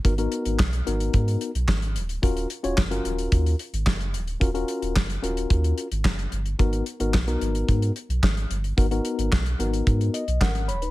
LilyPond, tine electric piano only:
\new Staff \with { instrumentName = "Tine electric piano" } { \time 4/4 \key gis \minor \tempo 4 = 110 << { r1 | r1 | r1 | r1 |
r2 r8 dis''8 <cis' ais' fis''>8 <cis'' b''>16 <dis' b'>16 | } \\ { <b dis' fis' ais'>16 <b dis' fis' ais'>8. r8 <b dis' fis' ais'>4~ <b dis' fis' ais'>16 r4 r16 | <cis' eis' fis' ais'>8 r16 <cis' eis' fis' cis''>16 r16 <cis' eis' fis' ais'>4~ <cis' eis' fis' ais'>16 r4. | <cis' eis' fis' ais'>16 <cis' eis' fis' ais'>8. r8 <cis' eis' fis' ais'>4~ <cis' eis' fis' ais'>16 r4 r16 | <b dis' fis' ais'>8 r16 <b dis' fis' ais'>16 r16 <b dis' fis' ais'>4~ <b dis' fis' ais'>16 r4. |
<b dis' fis' ais'>16 <b dis' fis' ais'>8. r8 <b dis' fis' ais'>4~ <b dis' fis' ais'>16 r4 r16 | } >> }